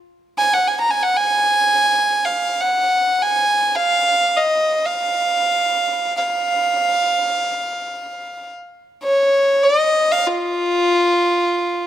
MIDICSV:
0, 0, Header, 1, 2, 480
1, 0, Start_track
1, 0, Tempo, 500000
1, 11394, End_track
2, 0, Start_track
2, 0, Title_t, "Violin"
2, 0, Program_c, 0, 40
2, 368, Note_on_c, 0, 80, 89
2, 513, Note_on_c, 0, 78, 81
2, 528, Note_off_c, 0, 80, 0
2, 649, Note_on_c, 0, 80, 72
2, 663, Note_off_c, 0, 78, 0
2, 753, Note_off_c, 0, 80, 0
2, 775, Note_on_c, 0, 82, 74
2, 867, Note_on_c, 0, 80, 80
2, 881, Note_off_c, 0, 82, 0
2, 992, Note_on_c, 0, 78, 83
2, 1006, Note_off_c, 0, 80, 0
2, 1116, Note_on_c, 0, 80, 99
2, 1130, Note_off_c, 0, 78, 0
2, 2161, Note_on_c, 0, 77, 80
2, 2176, Note_off_c, 0, 80, 0
2, 2501, Note_on_c, 0, 78, 74
2, 2515, Note_off_c, 0, 77, 0
2, 3094, Note_on_c, 0, 80, 81
2, 3109, Note_off_c, 0, 78, 0
2, 3603, Note_on_c, 0, 77, 87
2, 3617, Note_off_c, 0, 80, 0
2, 4193, Note_on_c, 0, 75, 76
2, 4207, Note_off_c, 0, 77, 0
2, 4660, Note_on_c, 0, 77, 81
2, 4675, Note_off_c, 0, 75, 0
2, 5904, Note_off_c, 0, 77, 0
2, 5920, Note_on_c, 0, 77, 79
2, 8121, Note_off_c, 0, 77, 0
2, 8680, Note_on_c, 0, 73, 83
2, 9248, Note_on_c, 0, 75, 87
2, 9263, Note_off_c, 0, 73, 0
2, 9711, Note_on_c, 0, 77, 87
2, 9725, Note_off_c, 0, 75, 0
2, 9863, Note_on_c, 0, 65, 82
2, 9877, Note_off_c, 0, 77, 0
2, 11394, Note_off_c, 0, 65, 0
2, 11394, End_track
0, 0, End_of_file